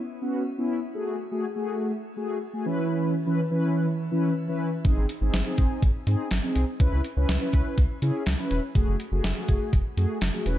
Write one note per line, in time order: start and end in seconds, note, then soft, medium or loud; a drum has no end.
0.22 0.43 B3 medium
0.22 0.43 C#4 medium
0.22 0.43 F#4 medium
0.58 0.79 B3 medium
0.58 0.79 C#4 medium
0.58 0.79 E4 medium
0.95 1.16 A3 medium
0.95 1.16 F#4 medium
0.95 1.16 G#4 medium
1.31 1.45 A3 medium
1.31 1.45 F#4 medium
1.31 1.45 G#4 medium
1.56 1.91 A3 medium
1.56 1.91 F#4 medium
1.56 1.91 G#4 medium
2.17 2.38 A3 medium
2.17 2.38 F#4 medium
2.17 2.38 G#4 medium
2.53 2.66 A3 medium
2.53 2.66 F#4 medium
2.53 2.66 G#4 medium
2.65 3.14 E3 medium
2.65 3.14 C#4 medium
2.65 3.14 E4 medium
2.65 3.14 B4 loud
3.26 3.40 E3 medium
3.26 3.40 C#4 medium
3.26 3.40 E4 medium
3.26 3.40 B4 medium
3.51 3.86 E3 medium
3.51 3.86 C#4 medium
3.51 3.86 E4 medium
3.51 3.86 B4 medium
4.11 4.33 E3 medium
4.11 4.33 C#4 medium
4.11 4.33 E4 medium
4.11 4.33 B4 medium
4.48 4.70 E3 medium
4.48 4.70 C#4 medium
4.48 4.70 E4 medium
4.48 4.70 B4 medium
4.85 4.94 G#1 loud
4.85 5.06 C4 medium
4.85 5.06 D#4 medium
4.85 5.06 G#4 medium
4.85 kick loud
4.85 closed hi-hat medium
4.97 5.06 G#1 medium
5.09 closed hi-hat medium
5.21 5.30 G#1 loud
5.21 5.35 C4 medium
5.21 5.35 D#4 medium
5.21 5.35 G#4 medium
5.34 5.43 G#1 loud
5.34 snare loud
5.34 closed hi-hat medium
5.46 5.81 C4 medium
5.46 5.81 D#4 medium
5.46 5.81 G#4 medium
5.58 5.67 G#1 medium
5.58 kick medium
5.58 closed hi-hat medium
5.82 5.92 G#1 loud
5.82 kick medium
5.82 closed hi-hat medium
6.07 6.16 G#2 loud
6.07 6.28 C4 medium
6.07 6.28 D#4 medium
6.07 6.28 G#4 loud
6.07 closed hi-hat medium
6.31 6.40 G#1 loud
6.31 snare loud
6.31 closed hi-hat medium
6.43 6.65 C4 medium
6.43 6.65 D#4 medium
6.43 6.65 G#4 medium
6.55 6.65 C2 medium
6.55 closed hi-hat medium
6.80 6.89 C#2 loud
6.80 7.01 C#4 medium
6.80 7.01 E4 medium
6.80 7.01 B4 loud
6.80 kick loud
6.80 closed hi-hat medium
6.92 7.01 C#2 loud
7.04 closed hi-hat medium
7.17 7.26 C#2 loud
7.17 7.31 C#4 medium
7.17 7.31 E4 medium
7.17 7.31 B4 medium
7.29 7.38 C#2 medium
7.29 snare loud
7.29 closed hi-hat medium
7.41 7.76 C#4 medium
7.41 7.76 E4 medium
7.41 7.76 B4 medium
7.53 7.62 C#2 loud
7.53 kick medium
7.53 closed hi-hat medium
7.78 7.87 C#2 loud
7.78 kick medium
7.78 closed hi-hat medium
8.02 8.11 C#3 loud
8.02 8.23 C#4 medium
8.02 8.23 E4 medium
8.02 8.23 G#4 medium
8.02 closed hi-hat medium
8.26 8.36 C#2 loud
8.26 snare loud
8.26 closed hi-hat medium
8.39 8.60 C#4 medium
8.39 8.60 E4 medium
8.39 8.60 B4 medium
8.51 8.60 E1 medium
8.51 closed hi-hat medium
8.75 8.84 F#1 loud
8.75 8.97 A3 medium
8.75 8.97 F#4 medium
8.75 8.97 G#4 loud
8.75 kick loud
8.75 closed hi-hat medium
8.88 8.97 F#1 loud
9.00 closed hi-hat medium
9.12 9.21 F#1 loud
9.12 9.26 A3 medium
9.12 9.26 F#4 medium
9.12 9.26 G#4 loud
9.24 9.33 F#1 loud
9.24 snare loud
9.24 closed hi-hat medium
9.36 9.72 A3 medium
9.36 9.72 F#4 medium
9.36 9.72 G#4 loud
9.48 9.58 F#1 loud
9.48 kick medium
9.48 closed hi-hat medium
9.73 9.82 F#1 loud
9.73 kick medium
9.73 closed hi-hat medium
9.97 10.06 F#2 medium
9.97 10.18 A3 medium
9.97 10.19 F#4 medium
9.97 10.18 G#4 medium
9.97 closed hi-hat medium
10.21 10.31 F#1 loud
10.21 snare loud
10.21 closed hi-hat medium
10.34 10.46 A3 medium
10.34 10.46 F#4 medium
10.34 10.46 G#4 medium
10.46 10.58 E1 medium
10.46 10.58 C#4 medium
10.46 10.58 E4 medium
10.46 10.58 B4 loud
10.46 closed hi-hat medium